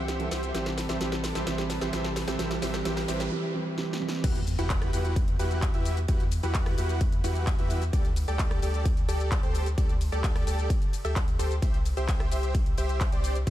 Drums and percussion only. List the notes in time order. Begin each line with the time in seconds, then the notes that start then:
0.08 snare, closed hi-hat, shaker
0.20 closed hi-hat
0.31 snare, open hi-hat, shaker
0.43 closed hi-hat, shaker
0.55 snare, closed hi-hat, shaker
0.66 snare, closed hi-hat
0.78 snare, open hi-hat, shaker
0.89 snare, closed hi-hat, shaker
1.01 snare, closed hi-hat, shaker
1.12 snare, closed hi-hat
1.24 snare, open hi-hat, shaker
1.35 snare, closed hi-hat, shaker
1.47 snare, closed hi-hat, shaker
1.58 snare, closed hi-hat
1.70 snare, open hi-hat, shaker
1.81 snare, closed hi-hat, shaker
1.93 snare, closed hi-hat, shaker
2.04 snare, closed hi-hat
2.16 snare, open hi-hat, shaker
2.28 snare, closed hi-hat, shaker
2.39 snare, closed hi-hat, shaker
2.51 snare, closed hi-hat
2.62 snare, open hi-hat, shaker
2.74 snare, closed hi-hat, shaker
2.85 snare, closed hi-hat, shaker
2.97 snare, open hi-hat
3.08 snare, open hi-hat, shaker
3.20 snare, closed hi-hat, shaker
3.78 snare
3.93 snare
4.09 snare
4.24 kick, closed hi-hat, crash, ride, shaker
4.36 closed hi-hat, shaker
4.47 open hi-hat, shaker
4.59 closed hi-hat, shaker
4.70 kick, clap, closed hi-hat, ride, shaker
4.82 cross-stick, closed hi-hat, shaker
4.93 open hi-hat, shaker
5.05 closed hi-hat, shaker
5.16 kick, closed hi-hat, ride, shaker
5.28 closed hi-hat, shaker
5.39 open hi-hat, shaker
5.51 closed hi-hat, shaker
5.62 kick, clap, closed hi-hat, ride, shaker
5.74 closed hi-hat, shaker
5.85 open hi-hat, shaker
5.97 closed hi-hat, shaker
6.08 kick, closed hi-hat, ride, shaker
6.20 closed hi-hat, shaker
6.32 open hi-hat, shaker
6.43 closed hi-hat, shaker
6.54 kick, clap, closed hi-hat, ride, shaker
6.66 cross-stick, open hi-hat, shaker
6.78 open hi-hat, shaker
6.89 closed hi-hat, shaker
7.01 kick, closed hi-hat, ride, shaker
7.12 closed hi-hat, shaker
7.24 open hi-hat, shaker
7.35 closed hi-hat, shaker
7.47 kick, clap, closed hi-hat, ride, shaker
7.59 closed hi-hat, shaker
7.70 open hi-hat, shaker
7.82 closed hi-hat, shaker
7.93 kick, closed hi-hat, ride, shaker
8.05 closed hi-hat, shaker
8.16 open hi-hat, shaker
8.28 closed hi-hat, shaker
8.39 kick, clap, closed hi-hat, ride, shaker
8.51 cross-stick, closed hi-hat, shaker
8.62 open hi-hat, shaker
8.74 closed hi-hat, shaker
8.85 kick, closed hi-hat, ride, shaker
8.97 closed hi-hat, shaker
9.09 open hi-hat, shaker
9.20 closed hi-hat, shaker
9.32 kick, clap, closed hi-hat, ride, shaker
9.43 closed hi-hat, shaker
9.55 open hi-hat, shaker
9.66 closed hi-hat, shaker
9.78 kick, closed hi-hat, ride, shaker
9.89 closed hi-hat, shaker
10.01 open hi-hat, shaker
10.13 closed hi-hat, shaker
10.24 kick, clap, closed hi-hat, ride, shaker
10.36 cross-stick, open hi-hat, shaker
10.47 open hi-hat, shaker
10.59 closed hi-hat, shaker
10.70 kick, closed hi-hat, ride, shaker
10.82 closed hi-hat, shaker
10.93 open hi-hat, shaker
11.05 closed hi-hat, shaker
11.16 kick, clap, closed hi-hat, ride, shaker
11.28 closed hi-hat, shaker
11.39 open hi-hat, shaker
11.51 closed hi-hat, shaker
11.62 kick, closed hi-hat, ride, shaker
11.74 closed hi-hat, shaker
11.86 open hi-hat, shaker
11.97 closed hi-hat, shaker
12.08 kick, clap, closed hi-hat, ride, shaker
12.20 cross-stick, closed hi-hat, shaker
12.32 open hi-hat, shaker
12.43 closed hi-hat, shaker
12.55 kick, closed hi-hat, ride, shaker
12.66 closed hi-hat, shaker
12.78 open hi-hat, shaker
12.89 closed hi-hat, shaker
13.01 kick, clap, closed hi-hat, ride, shaker
13.12 closed hi-hat, shaker
13.24 open hi-hat, shaker
13.35 closed hi-hat, shaker
13.47 kick, closed hi-hat, ride